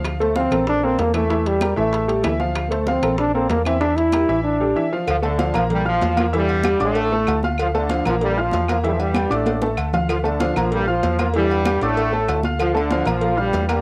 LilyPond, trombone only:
\new Staff \with { instrumentName = "Trombone" } { \time 4/4 \key d \minor \tempo 4 = 191 r8 a8 c'4 d'8 c'8 bes8 a8~ | a8 g4 a2 r8 | r16. bes32 a8 c'4 d'8 c'8 bes8 c'8 | d'8 e'4. d'4. r8 |
r1 | r1 | r1 | r1 |
r1 | r1 | r1 | }